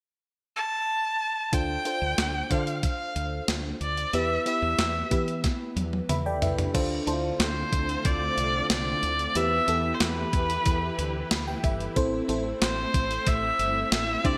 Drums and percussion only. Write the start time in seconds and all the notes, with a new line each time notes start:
1.53 kick, closed hi-hat
1.85 closed hi-hat
2.18 snare, closed hi-hat
2.51 kick, closed hi-hat
2.67 closed hi-hat
2.83 kick, closed hi-hat
3.16 closed hi-hat
3.48 snare, closed hi-hat
3.81 closed hi-hat
3.97 closed hi-hat
4.13 closed hi-hat
4.46 closed hi-hat
4.79 snare, closed hi-hat
5.11 kick, closed hi-hat
5.28 closed hi-hat
5.44 kick, snare, closed hi-hat
5.77 closed hi-hat, high tom
5.93 high tom
6.09 closed hi-hat, mid tom
6.42 closed hi-hat, floor tom
6.59 closed hi-hat, floor tom
6.75 kick, closed hi-hat, crash
7.07 closed hi-hat
7.40 snare, closed hi-hat
7.72 kick, closed hi-hat
7.89 closed hi-hat
8.05 kick, closed hi-hat
8.38 closed hi-hat
8.70 snare, closed hi-hat
9.03 closed hi-hat
9.19 closed hi-hat
9.35 closed hi-hat
9.68 closed hi-hat
10.00 snare, closed hi-hat
10.33 kick, closed hi-hat
10.50 closed hi-hat
10.66 kick, closed hi-hat
10.99 closed hi-hat
11.31 snare, closed hi-hat
11.64 kick, closed hi-hat
11.80 closed hi-hat
11.96 kick, closed hi-hat
12.29 closed hi-hat
12.62 snare, closed hi-hat
12.94 kick, closed hi-hat
13.11 closed hi-hat
13.27 kick, closed hi-hat
13.59 closed hi-hat
13.92 snare, closed hi-hat
14.25 kick, closed hi-hat